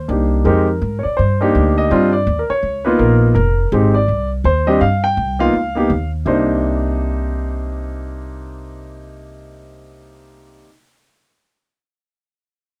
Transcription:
0.00 0.29 C5 medium
0.08 0.44 C2 medium
0.08 0.45 A#3 soft
0.08 0.45 D4 soft
0.08 0.45 D#4 soft
0.08 0.45 G4 medium
0.45 0.80 F2 medium
0.45 0.65 G#3 medium
0.45 0.66 C4 medium
0.45 0.66 D#4 medium
0.45 0.66 G4 medium
0.45 1.00 A#4 medium
0.82 1.03 G#2 medium
0.99 1.04 C#5 medium
1.03 1.18 D5 medium
1.03 muted upright bass stroke soft
1.17 1.54 G2 medium
1.17 1.72 C5 medium
1.41 1.88 A#3 medium
1.41 1.88 D4 medium
1.41 1.88 D#4 medium
1.41 1.88 G4 medium
1.55 1.90 D2 medium
1.78 2.11 D#5 medium
1.90 2.26 G2 medium
1.90 2.11 G3 medium
1.90 2.11 C4 medium
1.90 2.12 D4 medium
1.90 2.12 F4 medium
2.13 2.39 D5 medium
2.27 2.48 D#2 medium
2.39 2.49 A#4 medium
2.50 2.87 C#5 medium
2.50 muted upright bass stroke soft
2.63 2.98 C#2 medium
2.85 3.33 A#3 medium
2.85 3.33 B3 medium
2.85 3.33 D#4 medium
2.85 3.34 F4 medium
2.85 2.99 B4 medium
2.99 3.35 A#1 medium
2.99 3.27 A#4 medium
3.35 3.71 F1 medium
3.35 3.69 A#4 medium
3.72 4.07 G#1 medium
3.72 3.93 G#3 medium
3.72 3.93 C4 medium
3.72 3.94 D#4 medium
3.72 3.94 G4 medium
3.94 4.28 D5 medium
4.08 4.43 C2 medium
4.44 4.80 D#2 medium
4.44 4.68 C5 medium
4.67 4.79 G3 medium
4.67 4.79 C4 medium
4.67 4.80 D4 medium
4.67 4.80 G4 medium
4.67 4.81 D#5 medium
4.81 5.16 G2 medium
4.81 5.02 F5 medium
5.04 5.41 G5 medium
5.17 5.52 C2 medium
5.39 5.52 A#3 medium
5.39 5.52 B3 medium
5.39 5.52 D#4 medium
5.39 5.52 F4 medium
5.39 6.09 F5 medium
5.53 5.89 C#2 medium
5.75 5.88 A#3 medium
5.75 5.88 B3 medium
5.75 5.88 D#4 medium
5.75 5.89 G4 medium
5.90 6.25 D#2 medium
6.25 10.62 C2 medium
6.25 10.65 C3 medium
6.25 10.66 A#3 medium
6.25 10.67 D4 medium
6.25 10.67 D#4 medium
6.25 10.62 C5 medium

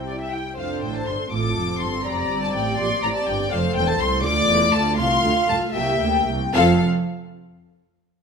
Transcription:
0.00 0.37 C2 medium
0.00 0.38 C3 medium
0.00 0.35 E4 medium
0.00 0.35 G4 medium
0.00 0.30 G5 medium
0.07 0.20 D5 medium
0.20 0.32 E5 medium
0.32 0.57 G5 medium
0.57 0.81 F1 medium
0.57 0.81 F2 medium
0.57 1.28 D4 medium
0.57 1.28 A4 medium
0.57 1.28 C5 medium
0.57 0.80 F5 medium
0.82 1.07 A1 medium
0.82 1.08 A2 medium
0.82 0.94 G5 medium
0.95 1.07 A5 medium
1.06 1.15 G1 medium
1.06 1.15 G2 medium
1.06 1.31 C6 medium
1.31 1.56 A1 medium
1.31 1.56 A2 medium
1.31 3.52 C4 medium
1.31 2.06 F4 medium
1.31 2.04 A4 medium
1.31 1.80 D6 medium
1.56 1.81 F1 medium
1.56 1.81 F2 medium
1.80 2.06 G1 medium
1.80 2.06 G2 medium
1.80 2.05 C6 loud
2.04 2.30 F1 medium
2.04 2.31 F2 medium
2.04 3.49 G4 medium
2.04 3.49 D5 medium
2.04 2.42 A#5 loud
2.30 2.54 G1 medium
2.30 2.55 G2 medium
2.42 2.54 A5 medium
2.54 2.79 A1 medium
2.54 2.79 A2 medium
2.54 2.78 G5 medium
2.79 2.87 A#1 medium
2.79 2.87 A#2 medium
2.79 3.03 C6 loud
3.03 3.11 A1 medium
3.03 3.12 A2 medium
3.03 3.08 A#5 loud
3.15 3.27 A5 loud
3.27 3.51 G1 medium
3.27 3.51 G2 medium
3.27 3.51 G5 loud
3.51 3.59 F1 medium
3.51 3.60 F2 medium
3.51 4.23 A3 medium
3.51 4.23 A4 medium
3.51 4.25 C5 medium
3.51 3.75 F5 loud
3.75 3.99 E1 medium
3.75 4.00 E2 medium
3.75 3.87 G5 loud
3.87 4.00 A5 loud
3.99 4.24 C2 medium
3.99 4.24 C6 loud
4.24 4.49 D2 medium
4.24 4.96 A3 medium
4.24 4.96 F4 medium
4.24 4.97 D5 medium
4.24 4.73 D6 loud
4.48 4.73 E1 medium
4.48 4.73 E2 medium
4.72 4.98 D2 medium
4.72 4.98 A5 loud
4.98 5.23 C2 medium
4.98 5.24 C2 medium
4.98 5.73 A3 medium
4.98 5.73 F4 medium
4.98 5.73 F5 loud
4.98 5.48 C6 loud
5.23 5.31 D2 medium
5.23 5.32 D2 medium
5.49 5.57 C2 medium
5.49 5.57 A5 loud
5.74 6.01 C2 medium
5.74 6.33 A#3 medium
5.74 6.33 G4 medium
5.74 6.13 E5 medium
5.74 6.53 G5 loud
6.01 6.28 D2 medium
6.28 6.54 C2 medium
6.54 6.83 F1 loud
6.54 6.84 F2 loud
6.54 6.83 C4 medium
6.54 6.83 F4 medium
6.54 6.83 A4 medium
6.54 6.83 F5 loud
6.54 6.83 F5 medium

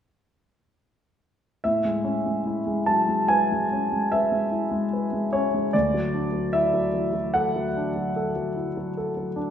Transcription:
1.64 5.70 A2 soft
1.64 2.88 E5 medium
1.85 2.18 G#3 soft
2.04 2.38 C#4 soft
2.26 2.59 G#3 soft
2.46 2.80 E4 soft
2.67 3.01 G#3 soft
2.86 3.09 F#3 soft
2.86 3.29 A5 medium
3.09 3.42 G#3 soft
3.28 3.63 B4 soft
3.28 4.10 G#5 medium
3.52 3.84 G#3 soft
3.72 4.04 C#4 soft
3.92 4.24 G#3 soft
4.12 4.44 B4 soft
4.12 5.32 E5 medium
4.32 4.63 G#3 soft
4.51 4.83 E4 soft
4.71 5.04 G#3 soft
4.93 5.25 B4 soft
5.13 5.45 G#3 soft
5.33 5.66 C#4 soft
5.33 5.74 C#5 medium
5.54 5.74 G#3 soft
5.73 9.50 D2 soft
5.73 6.55 D5 medium
5.94 6.27 F#3 soft
6.14 6.46 D4 soft
6.33 6.66 F#3 soft
6.53 6.86 E4 soft
6.53 7.34 E5 medium
6.74 7.06 F#3 soft
6.93 7.14 E3 soft
7.13 7.46 F#3 soft
7.34 7.67 A4 soft
7.34 9.36 F#5 medium
7.56 7.88 F#3 soft
7.77 8.09 D4 soft
7.96 8.29 F#3 soft
8.16 8.49 A4 soft
8.36 8.68 F#3 soft
8.56 8.88 E4 soft
8.77 9.09 F#3 soft
8.97 9.29 A4 soft
9.17 9.48 F#3 soft
9.36 9.50 D4 soft

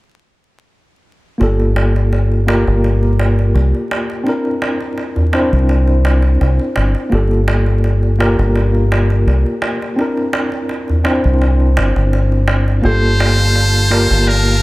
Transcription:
1.38 2.63 G1 medium
1.38 2.42 A#3 medium
1.38 2.43 F4 medium
1.38 2.44 G4 medium
1.38 darbuka tek soft
1.43 2.45 A4 medium
1.60 darbuka tek soft
1.76 darbuka tek medium
1.96 darbuka tek soft
2.13 darbuka tek soft
2.32 darbuka tek soft
2.47 2.73 A#3 medium
2.47 2.73 F4 medium
2.47 2.73 G4 medium
2.47 2.74 A#4 medium
2.47 darbuka tek medium
2.67 3.52 G1 medium
2.67 darbuka tek soft
2.84 darbuka tek soft
3.03 darbuka tek soft
3.19 darbuka tek medium
3.39 darbuka tek soft
3.54 3.71 C2 medium
3.54 darbuka tek soft
3.75 darbuka tek soft
3.91 darbuka tek medium
4.10 darbuka tek soft
4.24 5.28 C4 medium
4.24 5.29 D4 medium
4.24 5.30 E4 medium
4.24 darbuka tek soft
4.29 5.31 A#4 medium
4.45 darbuka tek soft
4.62 darbuka tek medium
4.80 darbuka tek soft
4.98 darbuka tek soft
5.16 darbuka tek soft
5.16 darbuka dum soft
5.32 5.58 C4 medium
5.32 5.59 D4 medium
5.32 5.59 E4 medium
5.32 5.59 C5 medium
5.32 darbuka tek medium
5.52 6.37 C2 medium
5.52 darbuka tek soft
5.69 darbuka tek soft
5.88 darbuka tek soft
6.05 darbuka tek medium
6.22 darbuka tek soft
6.41 6.57 C2 medium
6.41 darbuka tek soft
6.59 darbuka tek soft
6.76 6.93 G1 medium
6.76 darbuka tek medium
6.95 darbuka tek soft
7.10 8.35 G1 medium
7.10 8.14 A#3 medium
7.10 8.15 F4 medium
7.10 8.16 G4 medium
7.10 darbuka tek soft
7.15 8.17 A4 medium
7.31 darbuka tek soft
7.48 darbuka tek medium
7.66 darbuka tek soft
7.84 darbuka tek soft
8.03 darbuka tek soft
8.18 8.44 A#3 medium
8.18 8.45 F4 medium
8.18 8.45 G4 medium
8.18 8.45 A#4 medium
8.18 darbuka tek medium
8.38 9.23 G1 medium
8.38 darbuka tek soft
8.56 darbuka tek medium
8.75 darbuka tek soft
8.92 darbuka tek medium
9.10 darbuka tek soft
9.26 9.43 C2 medium
9.26 darbuka tek soft
9.46 darbuka tek soft
9.62 darbuka tek medium
9.82 darbuka tek soft
9.96 11.00 C4 medium
9.96 11.01 D4 medium
9.96 11.02 E4 medium
9.96 darbuka tek medium
10.01 11.03 A#4 medium
10.17 darbuka tek soft
10.33 darbuka tek medium
10.52 darbuka tek soft
10.69 darbuka tek soft
10.88 darbuka tek soft
10.88 darbuka dum soft
11.04 11.30 C4 medium
11.04 11.30 D4 medium
11.04 11.31 E4 medium
11.04 11.31 C5 medium
11.04 darbuka tek medium
11.24 11.76 C2 medium
11.24 darbuka tek soft
11.42 darbuka tek medium
11.60 darbuka tek soft
11.77 11.93 G1 medium
11.77 darbuka tek medium
11.96 12.80 G1 medium
11.96 darbuka tek soft
12.13 darbuka tek soft
12.32 darbuka tek soft
12.48 darbuka tek medium
12.68 darbuka tek soft
12.82 14.06 G1 medium
12.82 13.86 A#3 medium
12.82 13.87 F4 medium
12.82 13.87 G4 medium
12.82 14.30 C5 loud
12.82 14.62 F5 medium
12.82 14.62 A5 medium
12.82 darbuka tek soft
12.87 13.88 A4 medium
13.03 darbuka tek soft
13.20 darbuka tek medium
13.39 darbuka tek soft
13.55 darbuka tek soft
13.74 darbuka tek soft
13.90 14.16 A#3 medium
13.90 14.16 F4 medium
13.90 14.16 G4 medium
13.90 14.17 A#4 medium
13.90 darbuka tek medium
14.10 14.62 G1 medium
14.10 darbuka tek soft
14.27 14.62 A#4 loud
14.27 darbuka tek medium
14.46 darbuka tek soft

